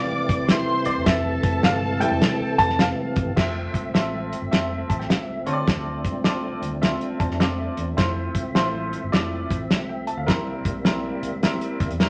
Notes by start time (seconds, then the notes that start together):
Already playing: C3 E3 G3 A3 C4 D5 F5 D6
0.11 muted fingered electric bass stroke
0.29 C2, kick, closed hi-hat
0.49 G3 A3 E4 C5 C6, snare, closed hi-hat, muted conga, high conga
0.85 C2 D5, closed hi-hat, muted conga
0.96 E1
1.06 F1 A4 E5 A5, kick, snare, closed hi-hat, muted conga, low conga
1.43 F1, kick, closed hi-hat, high conga
1.63 G1 F5, snare, closed hi-hat, muted conga, high conga
1.83 high conga
2.00 G3 A3 E4 G5, closed hi-hat, high conga, low conga
2.11 F1
2.22 snare, closed hi-hat, muted conga, high conga, low conga
2.40 muted fingered electric bass stroke
2.58 F1 A5, kick, closed hi-hat, muted conga
2.69 snare
2.79 F5, snare, closed hi-hat, muted conga, high conga
3.16 A1, kick, closed hi-hat
3.27 G1
3.36 F1 F3 A3 C4 F4 A4 E5, kick, snare, crash
3.73 C2, kick, closed hi-hat, muted conga, high conga
3.94 A1 C4 F4 A4 E5, snare, closed hi-hat, muted conga, high conga
4.13 high conga
4.32 closed hi-hat, muted conga, high conga, low conga
4.42 G1
4.51 F1 C4 F4 A4 E5, snare, closed hi-hat, muted conga, high conga, low conga
4.89 A1 A5, kick, closed hi-hat
4.99 G5, snare
5.10 C2 F5, snare, closed hi-hat, high conga
5.27 E5
5.46 D3 C4 D4 F4 A4 C#5, closed hi-hat
5.53 D5
5.67 D2, kick, snare, closed hi-hat
6.04 C2, kick, closed hi-hat, muted conga, high conga
6.24 C4 F4 A4 D5, snare, closed hi-hat, muted conga, high conga
6.44 high conga
6.62 D2, closed hi-hat, muted conga, high conga, low conga
6.82 C4 F4 A4 E5, snare, closed hi-hat, muted conga, high conga, low conga
7.01 closed hi-hat
7.20 E2 A5, kick, closed hi-hat
7.30 F2, snare
7.40 C4 F4 A4 D5 F5, snare, closed hi-hat, muted conga, high conga
7.58 E5
7.77 E2, closed hi-hat
7.97 F2 A3 E4 F4 C5 E5, kick, snare, closed hi-hat, muted conga, low conga
8.34 C2, kick, closed hi-hat, high conga
8.55 A1 A3 E4 F4 C5, snare, closed hi-hat, muted conga, high conga
8.74 high conga
8.93 closed hi-hat, muted conga, high conga, low conga
9.04 G1
9.12 F1 A3 E4 F4 D5, snare, closed hi-hat, high conga, low conga
9.49 A1, kick, closed hi-hat, muted conga
9.71 C2, snare, closed hi-hat, muted conga, high conga
9.89 G5
10.07 A5, closed hi-hat, muted conga
10.17 D2 F5
10.27 C2 G3 A#3 C4 E4 A#4, kick, snare, closed hi-hat, muted conga, low conga
10.64 A#1, kick, closed hi-hat, muted conga, high conga
10.85 G3 C4 E4 A#4, snare, closed hi-hat, muted conga, high conga
11.04 high conga
11.22 C2, closed hi-hat, muted conga, high conga, low conga
11.43 G3 C4 E4 A#4, snare, closed hi-hat, high conga, low conga
11.61 closed hi-hat
11.80 D2, kick, closed hi-hat
11.90 E2, closed hi-hat
12.00 G3 C4 E4 A#4, snare, closed hi-hat, muted conga, high conga